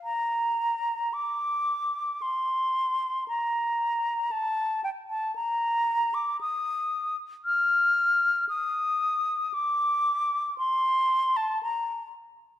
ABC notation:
X:1
M:3/4
L:1/16
Q:1/4=57
K:Bb
V:1 name="Flute"
b4 d'4 c'4 | b4 a2 g a b3 d' | e'3 z f'4 e'4 | d'4 c'3 a b2 z2 |]